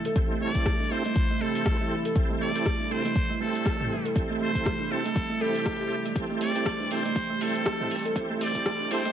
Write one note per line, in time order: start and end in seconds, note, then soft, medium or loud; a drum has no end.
0.00 9.12 C3 medium
0.00 9.12 E3 medium
0.00 9.12 G3 medium
0.00 6.12 A3 medium
0.00 6.15 E4 medium
0.00 0.17 A4 medium
0.05 0.11 A4 medium
0.05 closed hi-hat medium
0.16 0.52 C4 medium
0.16 0.52 E4 medium
0.16 0.52 G4 medium
0.16 0.52 A4 medium
0.16 kick loud
0.16 closed hi-hat soft
0.31 0.36 A3 loud
0.41 0.54 A3 medium
0.41 0.93 D5 loud
0.55 0.71 C4 medium
0.55 0.71 E4 medium
0.55 0.71 G4 medium
0.55 0.71 A4 loud
0.55 kick medium
0.55 closed hi-hat medium
0.66 0.79 A3 medium
0.66 kick loud
0.66 cross-stick loud
0.66 closed hi-hat soft
0.80 0.91 D4 medium
0.91 1.04 A3 medium
0.91 1.03 C4 medium
0.91 1.03 E4 medium
0.91 1.03 G4 medium
0.91 1.03 A4 loud
0.91 1.43 C5 loud
1.05 1.15 A3 loud
1.05 closed hi-hat medium
1.16 kick loud
1.16 closed hi-hat soft
1.30 1.36 A3 loud
1.41 1.54 A3 medium
1.41 1.77 C4 medium
1.41 1.77 E4 medium
1.41 1.77 G4 medium
1.41 1.77 A4 medium
1.41 2.16 A4 medium
1.55 closed hi-hat medium
1.66 1.79 A3 medium
1.66 kick loud
1.66 cross-stick loud
1.66 closed hi-hat soft
1.80 1.91 E3 medium
1.80 1.96 C4 medium
1.80 1.96 E4 medium
1.80 1.96 G4 medium
1.80 1.96 A4 loud
2.05 2.11 A4 medium
2.05 closed hi-hat medium
2.16 2.52 C4 medium
2.16 2.52 E4 medium
2.16 2.52 G4 medium
2.16 2.52 A4 medium
2.16 kick loud
2.16 closed hi-hat soft
2.30 2.36 A3 loud
2.41 2.54 A3 loud
2.41 2.93 D5 loud
2.55 2.71 C4 medium
2.55 2.71 E4 medium
2.55 2.71 G4 medium
2.55 2.71 A4 loud
2.55 closed hi-hat medium
2.66 2.79 A3 medium
2.66 kick loud
2.66 cross-stick loud
2.66 closed hi-hat soft
2.80 2.91 D4 medium
2.91 3.04 A3 medium
2.91 3.03 C4 loud
2.91 3.03 E4 medium
2.91 3.03 G4 medium
2.91 3.03 A4 loud
2.91 3.41 C5 loud
3.05 3.15 A3 loud
3.05 closed hi-hat medium
3.16 kick loud
3.16 closed hi-hat soft
3.30 3.36 A3 loud
3.41 3.54 A3 medium
3.41 3.77 C4 medium
3.41 3.77 E4 medium
3.41 3.77 G4 medium
3.41 3.77 A4 medium
3.41 4.13 A4 medium
3.55 closed hi-hat medium
3.66 3.79 A3 medium
3.66 kick loud
3.66 cross-stick loud
3.66 closed hi-hat soft
3.80 3.90 E3 medium
3.80 3.96 C4 medium
3.80 3.96 E4 medium
3.80 3.96 G4 medium
3.80 3.96 A4 loud
3.80 mid tom medium
4.05 4.11 A4 medium
4.05 closed hi-hat medium
4.16 4.52 C4 medium
4.16 4.52 E4 medium
4.16 4.52 G4 medium
4.16 4.52 A4 medium
4.16 kick loud
4.16 closed hi-hat soft
4.30 4.36 A3 loud
4.41 4.54 A3 loud
4.41 4.93 C5 loud
4.55 4.71 C4 medium
4.55 4.71 E4 medium
4.55 4.71 G4 medium
4.55 4.71 A4 loud
4.55 kick medium
4.55 closed hi-hat soft
4.66 4.79 A3 medium
4.66 kick loud
4.66 cross-stick loud
4.66 closed hi-hat soft
4.80 4.90 D4 medium
4.91 5.04 A3 medium
4.91 5.03 C4 medium
4.91 5.03 E4 medium
4.91 5.03 G4 medium
4.91 5.03 A4 loud
4.91 5.43 A4 loud
5.05 5.15 A3 loud
5.05 closed hi-hat soft
5.16 kick loud
5.16 closed hi-hat soft
5.30 5.36 A3 loud
5.41 5.77 C4 medium
5.41 5.77 E4 medium
5.41 5.77 G4 medium
5.41 6.16 G4 medium
5.41 5.49 A4 medium
5.41 5.77 A4 medium
5.56 closed hi-hat medium
5.66 5.74 A3 loud
5.66 kick loud
5.66 cross-stick loud
5.66 closed hi-hat soft
5.80 5.96 C4 medium
5.80 5.96 E4 medium
5.80 5.91 G4 medium
5.80 5.96 G4 medium
5.80 5.96 A4 loud
6.05 6.15 A3 medium
6.05 closed hi-hat medium
6.16 6.52 C4 medium
6.16 6.52 E4 medium
6.16 9.12 G4 medium
6.16 6.52 G4 medium
6.16 6.52 A4 medium
6.16 9.12 C5 medium
6.16 kick loud
6.16 closed hi-hat soft
6.30 6.36 A3 loud
6.41 6.54 A3 loud
6.41 6.88 D5 loud
6.41 open hi-hat medium
6.55 6.71 C4 medium
6.55 6.71 E4 medium
6.55 6.71 G4 medium
6.55 6.71 A4 loud
6.55 closed hi-hat medium
6.66 6.79 A3 medium
6.66 kick loud
6.66 cross-stick loud
6.66 closed hi-hat soft
6.80 6.91 D4 medium
6.91 7.04 A3 medium
6.91 7.03 C4 medium
6.91 7.03 E4 medium
6.91 7.03 G4 medium
6.91 7.03 A4 loud
6.91 7.44 C5 loud
6.91 open hi-hat medium
7.05 7.15 A3 loud
7.05 closed hi-hat soft
7.16 kick loud
7.16 closed hi-hat soft
7.30 7.36 A3 loud
7.41 7.54 A3 loud
7.41 7.77 C4 medium
7.41 7.77 E4 medium
7.41 7.77 G4 medium
7.41 7.77 A4 medium
7.41 8.17 A4 loud
7.41 open hi-hat medium
7.55 closed hi-hat medium
7.66 7.79 A3 medium
7.66 kick loud
7.66 cross-stick loud
7.66 closed hi-hat soft
7.80 7.91 E3 medium
7.80 7.96 C4 medium
7.80 7.96 E4 medium
7.80 7.96 G4 medium
7.80 7.96 A4 loud
7.80 mid tom medium
7.91 open hi-hat medium
8.05 8.11 A4 medium
8.05 closed hi-hat medium
8.16 8.52 C4 medium
8.16 8.52 E4 medium
8.16 8.52 G4 medium
8.16 8.52 A4 medium
8.16 kick loud
8.16 closed hi-hat soft
8.30 8.36 A3 loud
8.41 8.54 A3 loud
8.41 8.93 D5 loud
8.41 open hi-hat medium
8.55 8.71 C4 loud
8.55 8.71 E4 medium
8.55 8.71 G4 medium
8.55 8.71 A4 loud
8.55 kick medium
8.55 closed hi-hat medium
8.66 8.79 A3 medium
8.66 kick loud
8.66 cross-stick loud
8.66 closed hi-hat soft
8.81 8.91 D4 medium
8.91 9.04 A3 medium
8.91 9.03 C4 loud
8.91 9.03 E4 medium
8.91 9.03 G4 medium
8.91 9.03 A4 loud
8.91 9.12 C5 loud
8.91 open hi-hat medium
9.05 9.12 A3 loud
9.05 closed hi-hat medium